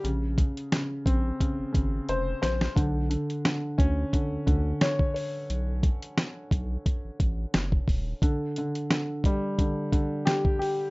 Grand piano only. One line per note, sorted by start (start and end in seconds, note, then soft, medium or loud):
0.04 0.37 C#3 medium
0.38 0.71 C#3 medium
0.73 1.39 C#3 medium
1.06 2.76 C4 medium
1.40 1.71 C#3 medium
1.72 2.76 C#3 medium
2.09 2.41 C5 medium
2.42 2.76 C5 medium
2.76 3.08 D3 medium
3.10 3.44 D3 medium
3.45 4.13 D3 medium
3.78 5.49 C#4 medium
4.14 4.45 D3 medium
4.46 5.49 D3 medium
4.82 5.13 C#5 loud
5.14 5.49 C#5 medium
8.23 8.56 D3 medium
8.58 8.89 D3 medium
8.91 9.58 D3 medium
9.26 10.90 G3 medium
9.60 9.90 D3 medium
9.92 10.90 D3 medium
10.26 10.58 G4 medium
10.59 10.90 G4 medium